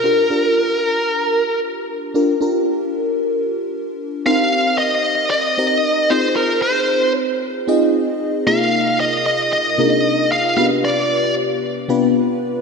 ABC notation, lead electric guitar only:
X:1
M:4/4
L:1/8
Q:1/4=114
K:Gphr
V:1 name="Lead electric guitar"
B6 z2 | z8 | f2 e2 e3 c | B c2 z4 z |
f2 e e e3 f | f d2 z4 z |]